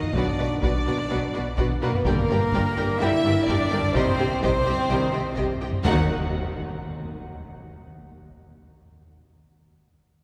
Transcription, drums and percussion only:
0, 0, Header, 1, 2, 480
1, 0, Start_track
1, 0, Tempo, 475059
1, 152, Time_signature, 4, 2, 24, 8
1, 10342, End_track
2, 0, Start_track
2, 0, Title_t, "Taiko and cinematic ensemble drums"
2, 21, Note_on_c, 9, 45, 56
2, 122, Note_off_c, 9, 45, 0
2, 141, Note_on_c, 9, 41, 110
2, 242, Note_off_c, 9, 41, 0
2, 268, Note_on_c, 9, 45, 66
2, 369, Note_off_c, 9, 45, 0
2, 634, Note_on_c, 9, 41, 97
2, 735, Note_off_c, 9, 41, 0
2, 992, Note_on_c, 9, 37, 45
2, 1093, Note_off_c, 9, 37, 0
2, 1595, Note_on_c, 9, 41, 91
2, 1696, Note_off_c, 9, 41, 0
2, 1709, Note_on_c, 9, 45, 65
2, 1810, Note_off_c, 9, 45, 0
2, 1951, Note_on_c, 9, 45, 64
2, 2052, Note_off_c, 9, 45, 0
2, 2067, Note_on_c, 9, 41, 111
2, 2168, Note_off_c, 9, 41, 0
2, 2191, Note_on_c, 9, 45, 65
2, 2292, Note_off_c, 9, 45, 0
2, 2434, Note_on_c, 9, 37, 45
2, 2535, Note_off_c, 9, 37, 0
2, 2546, Note_on_c, 9, 41, 100
2, 2647, Note_off_c, 9, 41, 0
2, 3509, Note_on_c, 9, 41, 87
2, 3610, Note_off_c, 9, 41, 0
2, 3634, Note_on_c, 9, 45, 62
2, 3735, Note_off_c, 9, 45, 0
2, 3870, Note_on_c, 9, 45, 63
2, 3971, Note_off_c, 9, 45, 0
2, 3990, Note_on_c, 9, 41, 116
2, 4092, Note_off_c, 9, 41, 0
2, 4114, Note_on_c, 9, 45, 64
2, 4215, Note_off_c, 9, 45, 0
2, 4472, Note_on_c, 9, 41, 98
2, 4573, Note_off_c, 9, 41, 0
2, 5433, Note_on_c, 9, 41, 86
2, 5534, Note_off_c, 9, 41, 0
2, 5547, Note_on_c, 9, 45, 64
2, 5648, Note_off_c, 9, 45, 0
2, 5786, Note_on_c, 9, 45, 61
2, 5887, Note_off_c, 9, 45, 0
2, 5905, Note_on_c, 9, 43, 99
2, 6006, Note_off_c, 9, 43, 0
2, 10342, End_track
0, 0, End_of_file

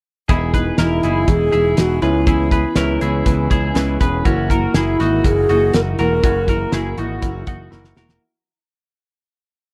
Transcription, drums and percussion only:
0, 0, Header, 1, 2, 480
1, 0, Start_track
1, 0, Tempo, 495050
1, 286, Time_signature, 4, 2, 24, 8
1, 9441, End_track
2, 0, Start_track
2, 0, Title_t, "Drums"
2, 283, Note_on_c, 9, 42, 66
2, 284, Note_on_c, 9, 36, 104
2, 380, Note_off_c, 9, 42, 0
2, 381, Note_off_c, 9, 36, 0
2, 521, Note_on_c, 9, 36, 77
2, 528, Note_on_c, 9, 42, 61
2, 618, Note_off_c, 9, 36, 0
2, 625, Note_off_c, 9, 42, 0
2, 756, Note_on_c, 9, 38, 104
2, 759, Note_on_c, 9, 42, 90
2, 853, Note_off_c, 9, 38, 0
2, 856, Note_off_c, 9, 42, 0
2, 1000, Note_on_c, 9, 42, 66
2, 1097, Note_off_c, 9, 42, 0
2, 1238, Note_on_c, 9, 42, 82
2, 1240, Note_on_c, 9, 36, 97
2, 1335, Note_off_c, 9, 42, 0
2, 1337, Note_off_c, 9, 36, 0
2, 1480, Note_on_c, 9, 42, 62
2, 1577, Note_off_c, 9, 42, 0
2, 1717, Note_on_c, 9, 42, 96
2, 1726, Note_on_c, 9, 38, 101
2, 1814, Note_off_c, 9, 42, 0
2, 1823, Note_off_c, 9, 38, 0
2, 1959, Note_on_c, 9, 42, 73
2, 2056, Note_off_c, 9, 42, 0
2, 2198, Note_on_c, 9, 42, 73
2, 2201, Note_on_c, 9, 36, 112
2, 2295, Note_off_c, 9, 42, 0
2, 2297, Note_off_c, 9, 36, 0
2, 2438, Note_on_c, 9, 36, 83
2, 2443, Note_on_c, 9, 42, 72
2, 2535, Note_off_c, 9, 36, 0
2, 2540, Note_off_c, 9, 42, 0
2, 2672, Note_on_c, 9, 38, 101
2, 2675, Note_on_c, 9, 42, 96
2, 2769, Note_off_c, 9, 38, 0
2, 2772, Note_off_c, 9, 42, 0
2, 2921, Note_on_c, 9, 42, 70
2, 3018, Note_off_c, 9, 42, 0
2, 3161, Note_on_c, 9, 36, 91
2, 3161, Note_on_c, 9, 42, 83
2, 3258, Note_off_c, 9, 36, 0
2, 3258, Note_off_c, 9, 42, 0
2, 3402, Note_on_c, 9, 36, 88
2, 3402, Note_on_c, 9, 42, 60
2, 3499, Note_off_c, 9, 36, 0
2, 3499, Note_off_c, 9, 42, 0
2, 3639, Note_on_c, 9, 42, 87
2, 3647, Note_on_c, 9, 38, 92
2, 3735, Note_off_c, 9, 42, 0
2, 3744, Note_off_c, 9, 38, 0
2, 3883, Note_on_c, 9, 42, 76
2, 3886, Note_on_c, 9, 36, 92
2, 3980, Note_off_c, 9, 42, 0
2, 3983, Note_off_c, 9, 36, 0
2, 4124, Note_on_c, 9, 36, 113
2, 4125, Note_on_c, 9, 42, 69
2, 4221, Note_off_c, 9, 36, 0
2, 4222, Note_off_c, 9, 42, 0
2, 4363, Note_on_c, 9, 36, 85
2, 4371, Note_on_c, 9, 42, 66
2, 4460, Note_off_c, 9, 36, 0
2, 4468, Note_off_c, 9, 42, 0
2, 4599, Note_on_c, 9, 38, 112
2, 4602, Note_on_c, 9, 42, 92
2, 4696, Note_off_c, 9, 38, 0
2, 4699, Note_off_c, 9, 42, 0
2, 4848, Note_on_c, 9, 42, 74
2, 4852, Note_on_c, 9, 38, 39
2, 4945, Note_off_c, 9, 42, 0
2, 4949, Note_off_c, 9, 38, 0
2, 5085, Note_on_c, 9, 36, 95
2, 5085, Note_on_c, 9, 42, 86
2, 5182, Note_off_c, 9, 36, 0
2, 5182, Note_off_c, 9, 42, 0
2, 5326, Note_on_c, 9, 42, 61
2, 5422, Note_off_c, 9, 42, 0
2, 5560, Note_on_c, 9, 42, 98
2, 5569, Note_on_c, 9, 38, 103
2, 5657, Note_off_c, 9, 42, 0
2, 5666, Note_off_c, 9, 38, 0
2, 5804, Note_on_c, 9, 42, 77
2, 5901, Note_off_c, 9, 42, 0
2, 6044, Note_on_c, 9, 42, 79
2, 6046, Note_on_c, 9, 36, 115
2, 6141, Note_off_c, 9, 42, 0
2, 6143, Note_off_c, 9, 36, 0
2, 6283, Note_on_c, 9, 36, 88
2, 6285, Note_on_c, 9, 42, 77
2, 6380, Note_off_c, 9, 36, 0
2, 6382, Note_off_c, 9, 42, 0
2, 6519, Note_on_c, 9, 38, 116
2, 6522, Note_on_c, 9, 42, 102
2, 6616, Note_off_c, 9, 38, 0
2, 6619, Note_off_c, 9, 42, 0
2, 6764, Note_on_c, 9, 42, 68
2, 6861, Note_off_c, 9, 42, 0
2, 7003, Note_on_c, 9, 42, 86
2, 7005, Note_on_c, 9, 36, 97
2, 7100, Note_off_c, 9, 42, 0
2, 7102, Note_off_c, 9, 36, 0
2, 7242, Note_on_c, 9, 42, 65
2, 7245, Note_on_c, 9, 36, 99
2, 7339, Note_off_c, 9, 42, 0
2, 7342, Note_off_c, 9, 36, 0
2, 7484, Note_on_c, 9, 38, 56
2, 7581, Note_off_c, 9, 38, 0
2, 7605, Note_on_c, 9, 38, 56
2, 7702, Note_off_c, 9, 38, 0
2, 7724, Note_on_c, 9, 38, 94
2, 7821, Note_off_c, 9, 38, 0
2, 7844, Note_on_c, 9, 38, 91
2, 7941, Note_off_c, 9, 38, 0
2, 9441, End_track
0, 0, End_of_file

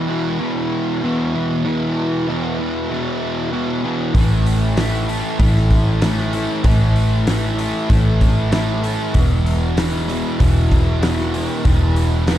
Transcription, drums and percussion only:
0, 0, Header, 1, 2, 480
1, 0, Start_track
1, 0, Tempo, 625652
1, 1261, Time_signature, 4, 2, 24, 8
1, 9499, End_track
2, 0, Start_track
2, 0, Title_t, "Drums"
2, 3182, Note_on_c, 9, 36, 105
2, 3182, Note_on_c, 9, 46, 77
2, 3258, Note_off_c, 9, 46, 0
2, 3259, Note_off_c, 9, 36, 0
2, 3424, Note_on_c, 9, 46, 53
2, 3501, Note_off_c, 9, 46, 0
2, 3660, Note_on_c, 9, 46, 71
2, 3664, Note_on_c, 9, 38, 105
2, 3737, Note_off_c, 9, 46, 0
2, 3740, Note_off_c, 9, 38, 0
2, 3905, Note_on_c, 9, 46, 51
2, 3982, Note_off_c, 9, 46, 0
2, 4140, Note_on_c, 9, 36, 107
2, 4141, Note_on_c, 9, 46, 81
2, 4217, Note_off_c, 9, 36, 0
2, 4218, Note_off_c, 9, 46, 0
2, 4265, Note_on_c, 9, 38, 36
2, 4342, Note_off_c, 9, 38, 0
2, 4377, Note_on_c, 9, 46, 54
2, 4378, Note_on_c, 9, 36, 72
2, 4454, Note_off_c, 9, 46, 0
2, 4455, Note_off_c, 9, 36, 0
2, 4616, Note_on_c, 9, 46, 71
2, 4620, Note_on_c, 9, 38, 118
2, 4693, Note_off_c, 9, 46, 0
2, 4697, Note_off_c, 9, 38, 0
2, 4742, Note_on_c, 9, 38, 30
2, 4819, Note_off_c, 9, 38, 0
2, 4857, Note_on_c, 9, 46, 52
2, 4933, Note_off_c, 9, 46, 0
2, 5096, Note_on_c, 9, 46, 78
2, 5098, Note_on_c, 9, 36, 109
2, 5172, Note_off_c, 9, 46, 0
2, 5175, Note_off_c, 9, 36, 0
2, 5339, Note_on_c, 9, 46, 50
2, 5415, Note_off_c, 9, 46, 0
2, 5578, Note_on_c, 9, 46, 75
2, 5582, Note_on_c, 9, 38, 101
2, 5655, Note_off_c, 9, 46, 0
2, 5658, Note_off_c, 9, 38, 0
2, 5820, Note_on_c, 9, 46, 52
2, 5896, Note_off_c, 9, 46, 0
2, 6059, Note_on_c, 9, 46, 73
2, 6060, Note_on_c, 9, 36, 113
2, 6136, Note_off_c, 9, 46, 0
2, 6137, Note_off_c, 9, 36, 0
2, 6299, Note_on_c, 9, 46, 56
2, 6300, Note_on_c, 9, 36, 70
2, 6376, Note_off_c, 9, 46, 0
2, 6377, Note_off_c, 9, 36, 0
2, 6538, Note_on_c, 9, 46, 72
2, 6542, Note_on_c, 9, 38, 115
2, 6614, Note_off_c, 9, 46, 0
2, 6618, Note_off_c, 9, 38, 0
2, 6780, Note_on_c, 9, 46, 50
2, 6857, Note_off_c, 9, 46, 0
2, 7015, Note_on_c, 9, 46, 66
2, 7020, Note_on_c, 9, 36, 106
2, 7092, Note_off_c, 9, 46, 0
2, 7097, Note_off_c, 9, 36, 0
2, 7262, Note_on_c, 9, 46, 52
2, 7338, Note_off_c, 9, 46, 0
2, 7498, Note_on_c, 9, 46, 74
2, 7502, Note_on_c, 9, 38, 101
2, 7574, Note_off_c, 9, 46, 0
2, 7578, Note_off_c, 9, 38, 0
2, 7745, Note_on_c, 9, 46, 52
2, 7822, Note_off_c, 9, 46, 0
2, 7980, Note_on_c, 9, 46, 80
2, 7982, Note_on_c, 9, 36, 98
2, 8057, Note_off_c, 9, 46, 0
2, 8059, Note_off_c, 9, 36, 0
2, 8221, Note_on_c, 9, 36, 80
2, 8222, Note_on_c, 9, 46, 57
2, 8298, Note_off_c, 9, 36, 0
2, 8299, Note_off_c, 9, 46, 0
2, 8460, Note_on_c, 9, 46, 75
2, 8463, Note_on_c, 9, 38, 103
2, 8536, Note_off_c, 9, 46, 0
2, 8540, Note_off_c, 9, 38, 0
2, 8585, Note_on_c, 9, 38, 33
2, 8662, Note_off_c, 9, 38, 0
2, 8700, Note_on_c, 9, 46, 55
2, 8777, Note_off_c, 9, 46, 0
2, 8938, Note_on_c, 9, 46, 75
2, 8940, Note_on_c, 9, 36, 106
2, 9014, Note_off_c, 9, 46, 0
2, 9017, Note_off_c, 9, 36, 0
2, 9178, Note_on_c, 9, 46, 56
2, 9254, Note_off_c, 9, 46, 0
2, 9417, Note_on_c, 9, 46, 71
2, 9421, Note_on_c, 9, 38, 98
2, 9494, Note_off_c, 9, 46, 0
2, 9497, Note_off_c, 9, 38, 0
2, 9499, End_track
0, 0, End_of_file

